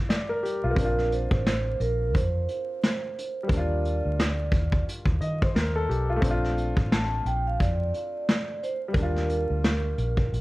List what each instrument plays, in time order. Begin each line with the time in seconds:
Already playing: upright piano A#3 D4 F4
0.09 upright piano D5, snare, closed hi-hat
0.29 upright piano A#4
0.43 upright piano G4, closed hi-hat
0.64 fingered electric bass B1, upright piano F4
0.70 upright piano A#3
0.75 fingered electric bass A#1, upright piano C4, kick, closed hi-hat
0.79 upright piano D4, vibraphone A#4
0.85 upright piano F4
0.98 snare
1.12 vibraphone C5, closed hi-hat
1.31 fingered electric bass A1, kick
1.46 vibraphone C5, snare, closed hi-hat
1.80 fingered electric bass A#1, vibraphone A#4, closed hi-hat
2.14 fingered electric bass F2, vibraphone C5, kick, closed hi-hat
2.49 closed hi-hat
2.83 snare, closed hi-hat
3.18 closed hi-hat
3.43 upright piano G3
3.48 fingered electric bass D#2, upright piano A#3, vibraphone D5, kick, closed hi-hat
3.53 upright piano D4
3.57 upright piano F4
3.85 closed hi-hat
4.05 fingered electric bass D2
4.20 snare, closed hi-hat
4.52 fingered electric bass D#2, kick, closed hi-hat
4.72 kick
4.89 closed hi-hat
5.05 fingered electric bass D#2, kick
5.21 fingered electric bass D#3, upright piano D#5, closed hi-hat
5.42 upright piano C5, kick
5.55 fingered electric bass D#2, upright piano A#4, snare, closed hi-hat
5.76 upright piano A4
5.89 fingered electric bass B1, upright piano G4, closed hi-hat
6.10 upright piano F4
6.16 upright piano A3
6.21 fingered electric bass A#1, upright piano C4, kick, closed hi-hat
6.26 upright piano D4
6.30 upright piano F4
6.44 snare
6.58 closed hi-hat
6.77 fingered electric bass A1, kick
6.92 vibraphone A5, snare, closed hi-hat
7.25 fingered electric bass A#1, vibraphone G5, closed hi-hat
7.47 vibraphone F5
7.60 fingered electric bass F2, vibraphone D5, kick, closed hi-hat
7.94 closed hi-hat
8.29 snare, closed hi-hat
8.63 vibraphone C5, closed hi-hat
8.88 upright piano G3
8.93 fingered electric bass D#2, upright piano A#3, kick, closed hi-hat
8.98 upright piano D4, vibraphone A#4
9.03 upright piano F4
9.16 snare
9.30 closed hi-hat
9.50 fingered electric bass D2
9.64 snare, closed hi-hat
9.98 fingered electric bass A#1, closed hi-hat
10.17 kick
10.32 fingered electric bass A#1, closed hi-hat